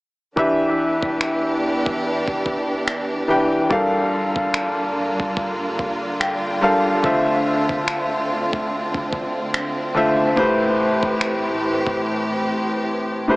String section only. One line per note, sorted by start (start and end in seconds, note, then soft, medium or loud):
0.37 3.67 E2 medium
0.37 3.67 E3 medium
0.37 3.67 D4 medium
0.37 3.67 G4 medium
3.70 7.00 G2 medium
3.70 10.33 D3 medium
3.70 7.00 A#3 medium
3.70 10.33 F4 medium
7.04 10.34 D2 medium
7.04 13.36 C4 medium
10.37 13.36 A2 medium
10.37 13.36 E3 medium
10.37 13.36 G4 medium